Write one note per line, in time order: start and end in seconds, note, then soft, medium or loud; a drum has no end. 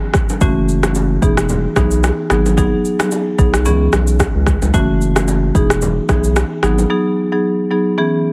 0.00 0.33 E3 medium
0.00 0.34 B3 medium
0.00 0.34 C#4 medium
0.00 0.34 G#4 medium
0.14 kick medium
0.14 cross-stick medium
0.14 shaker soft
0.29 low bongo medium
0.29 shaker medium
0.41 1.18 F#1 loud
0.41 0.62 E3 medium
0.41 0.62 A3 medium
0.41 0.62 C#4 medium
0.41 0.62 F#4 loud
0.41 kick loud
0.41 low conga medium
0.41 shaker medium
0.69 shaker soft
0.83 1.03 E3 medium
0.83 1.03 A3 medium
0.83 1.03 C#4 medium
0.83 1.03 F#4 medium
0.83 cross-stick medium
0.83 low bongo medium
0.83 shaker medium
0.95 high bongo medium
0.95 shaker medium
1.22 1.67 E1 medium
1.22 1.43 E3 medium
1.22 1.43 B3 medium
1.22 1.44 D#4 medium
1.22 1.44 G#4 medium
1.22 kick medium
1.22 shaker soft
1.37 cross-stick medium
1.37 shaker medium
1.49 low conga medium
1.49 shaker medium
1.76 2.11 B1 medium
1.76 1.97 E3 medium
1.76 1.97 B3 medium
1.76 1.97 D#4 medium
1.76 1.98 G#4 medium
1.76 kick medium
1.76 cross-stick medium
1.76 low bongo medium
1.76 low conga medium
1.76 shaker soft
1.91 shaker medium
2.04 cross-stick medium
2.04 high bongo medium
2.04 shaker medium
2.30 2.75 G#1 loud
2.30 2.55 F#3 medium
2.30 2.56 B3 medium
2.30 2.56 D#4 medium
2.30 2.56 G#4 loud
2.30 cross-stick medium
2.30 shaker soft
2.46 low bongo medium
2.46 shaker medium
2.57 2.78 F#3 medium
2.57 2.78 B3 medium
2.57 2.79 D#4 medium
2.57 2.79 G#4 loud
2.57 kick loud
2.57 low conga medium
2.57 shaker medium
2.85 shaker soft
2.99 3.19 F#3 medium
2.99 3.19 B3 medium
2.99 3.19 D#4 medium
2.99 3.19 G#4 medium
2.99 cross-stick loud
2.99 low bongo medium
2.99 shaker medium
3.11 high bongo medium
3.11 shaker medium
3.38 3.67 B1 medium
3.38 3.59 F#3 medium
3.38 3.60 B3 medium
3.38 3.60 D#4 medium
3.38 3.60 G#4 medium
3.38 kick loud
3.38 shaker soft
3.54 cross-stick medium
3.54 shaker medium
3.65 3.88 C#2 loud
3.65 4.66 E3 medium
3.65 4.66 B3 medium
3.65 4.66 C#4 medium
3.65 4.66 G#4 loud
3.65 low conga medium
3.65 shaker medium
3.93 4.27 B1 loud
3.93 cross-stick medium
3.93 low bongo medium
3.93 low conga medium
3.93 shaker soft
4.07 shaker medium
4.20 kick medium
4.20 cross-stick medium
4.20 high bongo medium
4.20 shaker medium
4.35 4.57 C#2 medium
4.46 kick medium
4.46 cross-stick medium
4.46 shaker soft
4.62 4.72 C#2 medium
4.62 low bongo medium
4.62 shaker medium
4.74 5.51 F#1 loud
4.74 4.95 E3 medium
4.74 4.95 A3 medium
4.74 4.95 C#4 medium
4.74 4.95 F#4 loud
4.74 kick loud
4.74 low conga medium
4.74 shaker medium
5.01 shaker soft
5.16 5.35 E3 medium
5.16 5.35 A3 medium
5.16 5.35 C#4 medium
5.16 5.36 F#4 medium
5.16 cross-stick medium
5.16 low bongo medium
5.16 shaker medium
5.28 high bongo medium
5.28 shaker medium
5.55 5.99 E1 medium
5.55 5.76 E3 medium
5.55 5.76 B3 medium
5.55 5.76 D#4 medium
5.55 5.76 G#4 medium
5.55 kick medium
5.55 shaker soft
5.70 cross-stick medium
5.70 shaker medium
5.82 low conga medium
5.82 shaker medium
6.09 6.43 B1 medium
6.09 6.30 E3 medium
6.09 6.30 B3 medium
6.09 6.30 D#4 medium
6.09 6.30 G#4 medium
6.09 kick medium
6.09 cross-stick medium
6.09 low bongo medium
6.09 low conga medium
6.09 shaker soft
6.24 shaker medium
6.36 cross-stick medium
6.36 high bongo medium
6.36 shaker medium
6.63 6.85 G#1 loud
6.63 6.88 F#3 medium
6.63 6.88 B3 medium
6.63 6.88 D#4 medium
6.63 6.88 G#4 loud
6.63 cross-stick medium
6.63 shaker soft
6.79 low bongo medium
6.79 shaker medium
6.90 7.11 F#3 medium
6.90 7.11 B3 medium
6.90 7.11 D#4 medium
6.90 7.11 G#4 loud
7.32 7.51 F#3 medium
7.32 7.52 B3 medium
7.32 7.52 D#4 medium
7.32 7.52 G#4 medium
7.71 7.92 F#3 medium
7.71 7.92 B3 medium
7.71 7.92 D#4 medium
7.71 7.92 G#4 medium
7.98 8.33 E3 medium
7.98 8.33 B3 medium
7.98 8.33 C#4 medium
7.98 8.33 G#4 loud